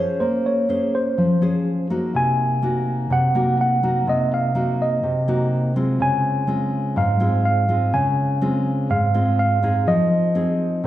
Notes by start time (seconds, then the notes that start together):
Already playing: F3 C#4 G#4 C5 C#5
0.20 A#3 C5
0.46 C#5
0.69 C#4 G#4 C5
0.95 C5
1.18 F3
1.42 C#4 G#4 C5
1.90 A#3 D#4 F#4
2.15 C3 G#5
2.62 A#3 D#4 F#4
3.10 C3 F#5
3.35 A#3 D#4 F#4
3.61 F#5
3.83 A#3 D#4 F#4
4.07 C3 D#5
4.34 F5
4.55 A#3 D#4 F#4
4.82 D#5
5.03 C3
5.28 A#3 D#4 F#4
5.76 G#3 C4 F4
6.00 C#3 G#5
6.47 G#3 C4 F4
6.96 G#2 F5
7.20 G#3 C4 F4
7.45 F5
7.69 G#3 C4 F4
7.93 C#3 G#5
8.41 G#3 C4 F4
8.90 G#2 F5
9.14 G#3 C4 F4
9.39 F5
9.63 C4 D#4 G#4
9.87 F3 D#5
10.35 C4 D#4 G#4
10.84 C3